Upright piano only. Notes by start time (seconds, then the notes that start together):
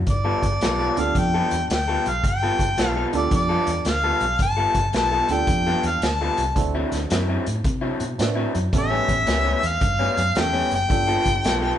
0.96 B3 D4 F4 G4 A4
3.13 B3 D4 F4 G4 A4
5.29 B3 D4 F4 G4 A4
6.55 C4 D4 E4 F#4 A4
8.18 C4 D4 E4 F#4 B4
8.73 B3 C#4 E4 G4 A4
10.36 B3 C#4 E4 G4 A4
10.89 B3 D4 F4 G4 A4